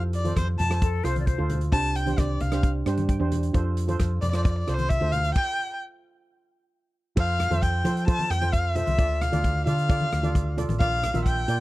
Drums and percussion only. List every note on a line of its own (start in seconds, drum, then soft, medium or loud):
0.13 closed hi-hat medium
0.25 closed hi-hat medium
0.25 high conga medium
0.36 kick medium
0.36 cross-stick medium
0.36 closed hi-hat medium
0.36 high conga medium
0.59 closed hi-hat medium
0.59 low conga medium
0.71 cross-stick medium
0.71 closed hi-hat medium
0.82 kick loud
0.82 closed hi-hat medium
1.05 cross-stick medium
1.05 closed hi-hat medium
1.16 closed hi-hat medium
1.16 high conga medium
1.27 kick medium
1.27 closed hi-hat medium
1.50 closed hi-hat medium
1.50 low conga medium
1.61 closed hi-hat medium
1.72 kick loud
1.72 closed hi-hat medium
1.95 closed hi-hat medium
2.07 closed hi-hat medium
2.07 high conga medium
2.18 kick medium
2.18 cross-stick medium
2.18 closed hi-hat medium
2.18 high conga medium
2.40 closed hi-hat medium
2.40 low conga medium
2.52 cross-stick medium
2.52 closed hi-hat medium
2.63 kick loud
2.63 closed hi-hat medium
2.86 cross-stick medium
2.86 closed hi-hat medium
2.97 closed hi-hat medium
2.97 high conga medium
3.09 kick medium
3.09 closed hi-hat medium
3.32 closed hi-hat medium
3.32 low conga medium
3.43 closed hi-hat medium
3.54 kick loud
3.54 closed hi-hat medium
3.77 closed hi-hat medium
3.89 closed hi-hat medium
3.89 high conga medium
4.00 kick medium
4.00 cross-stick medium
4.00 closed hi-hat medium
4.00 high conga medium
4.22 closed hi-hat medium
4.22 low conga medium
4.33 cross-stick medium
4.33 closed hi-hat medium
4.45 kick loud
4.45 closed hi-hat medium
4.68 cross-stick medium
4.68 closed hi-hat medium
4.79 closed hi-hat medium
4.79 high conga medium
4.90 kick medium
4.90 closed hi-hat medium
5.13 closed hi-hat medium
5.13 low conga medium
5.24 closed hi-hat medium
5.36 kick loud
5.36 crash medium
7.17 kick loud
7.17 crash loud
7.39 cross-stick medium
7.39 closed hi-hat medium
7.39 low conga medium
7.51 closed hi-hat medium
7.51 high conga medium
7.63 kick medium
7.63 closed hi-hat medium
7.85 closed hi-hat medium
7.85 low conga medium
7.97 closed hi-hat medium
8.08 kick loud
8.08 closed hi-hat medium
8.19 high conga medium
8.31 cross-stick medium
8.31 closed hi-hat medium
8.42 closed hi-hat medium
8.42 high conga medium
8.53 kick medium
8.53 closed hi-hat medium
8.76 closed hi-hat medium
8.76 low conga medium
8.87 closed hi-hat medium
8.87 high conga medium
8.98 kick loud
8.98 closed hi-hat medium
9.21 cross-stick medium
9.21 closed hi-hat medium
9.21 low conga medium
9.32 closed hi-hat medium
9.32 high conga medium
9.44 kick medium
9.44 closed hi-hat medium
9.67 closed hi-hat medium
9.67 low conga medium
9.78 closed hi-hat medium
9.90 kick loud
9.90 closed hi-hat medium
10.01 high conga medium
10.13 cross-stick medium
10.13 closed hi-hat medium
10.24 closed hi-hat medium
10.24 high conga medium
10.35 kick medium
10.35 closed hi-hat medium
10.58 closed hi-hat medium
10.58 low conga medium
10.69 closed hi-hat medium
10.69 high conga medium
10.81 kick loud
10.81 closed hi-hat medium
11.03 cross-stick medium
11.03 closed hi-hat loud
11.03 low conga medium
11.14 closed hi-hat medium
11.14 high conga medium
11.26 kick medium
11.26 closed hi-hat medium
11.48 closed hi-hat medium